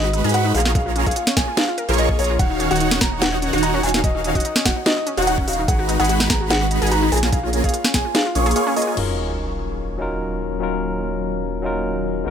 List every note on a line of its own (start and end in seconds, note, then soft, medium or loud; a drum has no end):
0.00 0.22 G#1 loud
0.00 0.22 G#3 medium
0.00 0.22 D#4 medium
0.00 0.22 F#4 medium
0.00 0.11 F#4 medium
0.00 0.22 B4 medium
0.00 0.30 D#5 loud
0.00 0.22 B5 medium
0.13 0.24 D#4 medium
0.13 closed hi-hat medium
0.24 0.53 G#2 medium
0.24 0.52 G#3 medium
0.24 0.52 D#4 medium
0.24 0.52 F#4 medium
0.24 0.31 G#4 loud
0.24 0.52 B4 medium
0.24 0.52 B5 loud
0.24 closed hi-hat medium
0.29 closed hi-hat medium
0.34 0.42 F#4 medium
0.34 0.53 F#5 medium
0.34 closed hi-hat medium
0.45 0.49 D#4 loud
0.54 1.04 A#1 loud
0.54 1.04 A#3 loud
0.54 1.04 F4 medium
0.54 0.62 G#4 medium
0.54 1.04 G#4 medium
0.54 1.04 C#5 medium
0.54 0.73 F5 medium
0.54 1.04 A#5 loud
0.54 open hi-hat medium
0.60 closed hi-hat medium
0.65 0.69 F4 medium
0.65 snare medium
0.75 0.83 G#4 medium
0.75 1.03 F5 medium
0.75 kick loud
0.75 closed hi-hat medium
0.86 0.93 F4 medium
0.96 1.06 C#4 medium
0.96 closed hi-hat medium
1.06 1.13 A#1 loud
1.06 1.15 A#3 medium
1.06 1.15 F4 medium
1.06 1.15 G#4 medium
1.06 1.13 G#4 loud
1.06 1.15 C#5 medium
1.06 1.34 F5 medium
1.06 1.15 C#6 medium
1.06 kick medium
1.06 closed hi-hat soft
1.11 closed hi-hat medium
1.16 1.24 F4 medium
1.16 closed hi-hat medium
1.27 1.31 C#4 loud
1.27 snare medium
1.37 1.44 A#1 medium
1.37 1.46 A#3 medium
1.37 1.46 F4 medium
1.37 1.44 G#4 medium
1.37 1.46 G#4 medium
1.37 1.46 C#5 medium
1.37 1.55 G#5 medium
1.37 1.46 G#5 medium
1.37 kick loud
1.37 snare medium
1.37 closed hi-hat medium
1.48 1.52 F4 medium
1.57 1.65 G#4 medium
1.57 1.94 F5 medium
1.57 snare loud
1.57 closed hi-hat medium
1.68 1.75 F4 medium
1.78 1.85 A#4 medium
1.78 closed hi-hat medium
1.89 2.17 A#1 medium
1.89 2.17 A#3 loud
1.89 2.17 F4 medium
1.89 2.17 G#4 medium
1.89 1.93 A#4 loud
1.89 2.17 C#5 medium
1.89 2.17 C#6 loud
1.89 closed hi-hat soft
1.94 closed hi-hat medium
1.98 2.03 A#4 loud
1.98 2.17 D#5 medium
1.98 closed hi-hat medium
2.09 2.13 G#4 medium
2.09 kick medium
2.19 2.38 A#1 medium
2.19 2.28 A#3 medium
2.19 2.28 F4 medium
2.19 2.26 G#4 medium
2.19 2.28 G#4 medium
2.19 2.37 C#5 medium
2.19 2.28 C#5 medium
2.19 2.28 A#5 medium
2.19 open hi-hat medium
2.24 closed hi-hat medium
2.30 2.39 F4 medium
2.39 2.69 D#1 loud
2.39 2.68 D#3 medium
2.39 2.68 D#4 medium
2.39 2.47 F#4 medium
2.39 2.68 F#4 medium
2.39 2.68 C#5 medium
2.39 2.68 F5 medium
2.39 2.67 F#5 loud
2.39 kick loud
2.39 closed hi-hat medium
2.50 2.57 D#4 medium
2.60 2.70 C#4 medium
2.60 closed hi-hat medium
2.71 2.99 D#1 loud
2.71 2.99 D#3 medium
2.71 2.99 D#4 medium
2.71 2.78 F#4 loud
2.71 2.99 F#4 medium
2.71 2.99 C#5 medium
2.71 2.99 F#5 loud
2.71 2.98 F#5 medium
2.71 closed hi-hat soft
2.76 closed hi-hat medium
2.80 2.88 D#4 medium
2.80 closed hi-hat medium
2.91 2.95 C#4 loud
2.91 snare medium
3.01 3.51 D#1 medium
3.01 3.50 D#3 medium
3.01 3.51 D#4 medium
3.01 3.09 F#4 medium
3.01 3.51 F#4 medium
3.01 3.50 C#5 medium
3.01 3.50 F#5 loud
3.01 3.20 A#5 medium
3.01 kick loud
3.01 snare medium
3.01 closed hi-hat medium
3.12 3.16 D#4 medium
3.21 3.29 F#4 medium
3.21 3.59 F#5 medium
3.21 snare loud
3.21 closed hi-hat medium
3.33 3.39 D#4 medium
3.42 3.53 C#4 medium
3.42 closed hi-hat medium
3.53 3.81 D#1 medium
3.53 3.81 D#3 medium
3.53 3.81 D#4 medium
3.53 3.60 F#4 loud
3.53 3.81 F#4 medium
3.53 3.81 C#5 medium
3.53 3.81 F#5 loud
3.53 closed hi-hat soft
3.58 closed hi-hat medium
3.63 3.70 D#4 medium
3.63 3.81 A#5 medium
3.63 closed hi-hat medium
3.74 3.78 C#4 loud
3.83 4.33 D#1 medium
3.83 4.33 D#3 loud
3.83 4.33 D#4 medium
3.83 3.91 F#4 medium
3.83 4.33 F#4 medium
3.83 4.33 C#5 medium
3.83 4.33 F5 loud
3.83 4.02 G#5 medium
3.83 open hi-hat loud
3.89 closed hi-hat medium
3.94 3.98 D#4 medium
3.94 snare medium
4.04 4.11 F#4 medium
4.04 4.32 D#5 medium
4.04 kick loud
4.04 closed hi-hat medium
4.15 4.21 D#4 medium
4.24 4.35 C#4 medium
4.24 closed hi-hat medium
4.35 4.41 D#1 loud
4.35 4.43 D#3 medium
4.35 4.43 D#4 medium
4.35 4.42 F#4 loud
4.35 4.43 F#4 medium
4.35 4.43 C#5 medium
4.35 4.62 D#5 medium
4.35 4.43 F#5 medium
4.35 kick medium
4.35 closed hi-hat soft
4.40 closed hi-hat medium
4.45 4.53 D#4 medium
4.45 closed hi-hat medium
4.56 4.60 C#4 loud
4.56 snare medium
4.65 4.72 D#1 loud
4.65 4.75 D#3 medium
4.65 4.75 D#4 medium
4.65 4.73 F#4 medium
4.65 4.75 F#4 medium
4.65 4.75 C#5 medium
4.65 4.75 D#5 medium
4.65 4.84 F#5 medium
4.65 kick loud
4.65 snare medium
4.65 closed hi-hat medium
4.76 4.80 D#4 medium
4.86 4.94 F#4 medium
4.86 5.23 D#5 loud
4.86 snare loud
4.86 closed hi-hat medium
4.97 5.04 D#4 medium
5.06 5.17 C#4 medium
5.06 closed hi-hat medium
5.17 5.46 D#1 medium
5.17 5.45 D#3 loud
5.17 5.45 D#4 medium
5.17 5.24 F#4 loud
5.17 5.45 F#4 medium
5.17 5.45 C#5 medium
5.17 5.45 F#5 loud
5.17 closed hi-hat soft
5.22 closed hi-hat medium
5.27 5.35 D#4 medium
5.27 5.46 F#5 medium
5.27 closed hi-hat medium
5.38 5.42 C#4 loud
5.38 kick medium
5.48 5.66 D#1 loud
5.48 5.57 D#3 medium
5.48 5.57 D#4 medium
5.48 5.55 F#4 medium
5.48 5.57 F#4 medium
5.48 5.57 C#5 medium
5.48 5.66 F5 medium
5.48 5.57 F5 medium
5.48 open hi-hat loud
5.53 closed hi-hat medium
5.58 5.63 D#4 medium
5.68 5.97 G#1 loud
5.68 5.97 G#3 medium
5.68 5.97 D#4 medium
5.68 5.97 F#4 medium
5.68 5.76 G#4 medium
5.68 5.97 B4 medium
5.68 5.96 F#5 loud
5.68 5.97 A#5 medium
5.68 kick loud
5.68 closed hi-hat medium
5.79 5.86 F#4 medium
5.89 5.99 D#4 medium
5.89 closed hi-hat medium
5.99 6.28 G#1 loud
5.99 6.28 G#3 medium
5.99 6.28 D#4 medium
5.99 6.28 F#4 medium
5.99 6.06 G#4 loud
5.99 6.28 B4 medium
5.99 6.27 F#5 loud
5.99 6.28 B5 loud
5.99 closed hi-hat soft
6.04 closed hi-hat medium
6.09 6.17 F#4 medium
6.09 closed hi-hat medium
6.20 6.24 D#4 loud
6.20 snare medium
6.30 6.80 G#1 medium
6.30 6.79 G#3 medium
6.30 6.79 D#4 medium
6.30 6.79 F#4 medium
6.30 6.37 G#4 medium
6.30 6.79 B4 medium
6.30 6.48 A#5 medium
6.30 6.79 B5 medium
6.30 kick loud
6.30 snare medium
6.30 closed hi-hat medium
6.41 6.45 F#4 medium
6.50 6.58 G#4 medium
6.50 6.87 F#5 loud
6.50 snare loud
6.50 closed hi-hat medium
6.61 6.68 F#4 medium
6.71 6.81 D#4 medium
6.71 closed hi-hat medium
6.82 7.10 G#1 loud
6.82 7.10 G#3 medium
6.82 7.10 D#4 medium
6.82 7.10 F#4 medium
6.82 6.89 G#4 loud
6.82 7.10 B4 medium
6.82 7.10 B5 loud
6.82 closed hi-hat medium
6.87 closed hi-hat medium
6.91 6.99 F#4 medium
6.91 7.10 A#5 medium
6.91 closed hi-hat medium
7.02 7.06 D#4 loud
7.12 7.62 A#1 medium
7.12 7.61 A#3 loud
7.12 7.61 F4 medium
7.12 7.20 G#4 medium
7.12 7.61 G#4 medium
7.12 7.61 C#5 medium
7.12 7.31 G#5 medium
7.12 7.61 A#5 loud
7.12 open hi-hat loud
7.17 closed hi-hat medium
7.23 7.27 F4 medium
7.23 snare medium
7.32 7.40 G#4 medium
7.32 7.61 F5 medium
7.32 kick loud
7.32 closed hi-hat medium
7.43 7.50 F4 medium
7.53 7.63 C#4 medium
7.53 closed hi-hat medium
7.64 7.70 A#1 loud
7.64 7.72 A#3 medium
7.64 7.72 F4 medium
7.64 7.71 G#4 loud
7.64 7.72 G#4 medium
7.64 7.72 C#5 medium
7.64 7.91 F5 loud
7.64 7.72 C#6 medium
7.64 kick medium
7.64 closed hi-hat medium
7.69 closed hi-hat medium
7.74 7.81 F4 medium
7.74 closed hi-hat medium
7.84 7.89 C#4 loud
7.84 snare medium
7.94 8.01 A#1 loud
7.94 8.03 A#3 medium
7.94 8.03 F4 medium
7.94 8.02 G#4 medium
7.94 8.03 G#4 medium
7.94 8.03 C#5 medium
7.94 8.03 G#5 medium
7.94 8.13 G#5 medium
7.94 kick loud
7.94 snare medium
7.94 closed hi-hat medium
8.05 8.09 F4 medium
8.15 8.22 G#4 medium
8.15 8.52 F5 medium
8.15 snare loud
8.15 closed hi-hat medium
8.26 8.32 F4 medium
8.35 8.54 A#1 loud
8.35 8.54 A#3 medium
8.35 8.46 C#4 medium
8.35 8.54 F4 medium
8.35 8.54 G#4 medium
8.35 8.54 C#5 medium
8.35 8.54 C#6 loud
8.35 closed hi-hat medium
8.46 8.53 G#4 loud
8.46 closed hi-hat medium
8.51 closed hi-hat medium
8.56 8.64 A#3 loud
8.56 8.63 F4 medium
8.56 8.64 F4 medium
8.56 8.64 G#4 medium
8.56 8.64 C#5 medium
8.56 8.74 F5 medium
8.56 8.64 C#6 loud
8.56 closed hi-hat medium
8.67 8.74 A#3 medium
8.67 8.71 C#4 loud
8.67 8.74 F4 medium
8.67 8.74 G#4 medium
8.67 8.74 C#5 medium
8.67 8.74 C#6 medium
8.76 8.95 A#3 medium
8.76 8.95 F4 medium
8.76 8.84 G#4 medium
8.76 8.95 G#4 medium
8.76 8.95 C#5 medium
8.76 8.95 D#5 medium
8.76 8.95 G#5 medium
8.76 open hi-hat loud
8.82 closed hi-hat medium
8.87 8.91 F4 medium
8.95 12.24 D#1 medium
8.95 12.23 D#3 medium
8.95 9.96 F#3 medium
8.95 12.30 F#3 medium
8.95 12.23 A#3 medium
8.95 9.97 C#4 medium
8.95 12.23 C#4 medium
8.95 9.97 D#4 medium
8.95 9.98 F4 medium
8.95 9.98 A#4 medium
8.95 crash medium
8.95 sub drop medium
9.98 10.58 F#3 medium
9.98 10.59 C#4 medium
9.98 10.59 D#4 medium
9.98 10.60 F4 medium
10.02 10.60 A#4 medium
10.60 11.61 F#3 medium
10.60 11.61 C#4 medium
10.60 11.62 D#4 medium
10.60 11.62 F4 medium
10.60 11.63 A#4 medium
11.62 12.22 F#3 medium
11.62 12.23 C#4 medium
11.62 12.23 D#4 medium
11.62 12.24 F4 medium
11.66 12.24 A#4 medium
12.24 12.30 G#1 medium
12.24 12.30 G#3 medium
12.24 12.30 B3 medium
12.24 12.30 D#4 medium
12.24 12.30 F#4 medium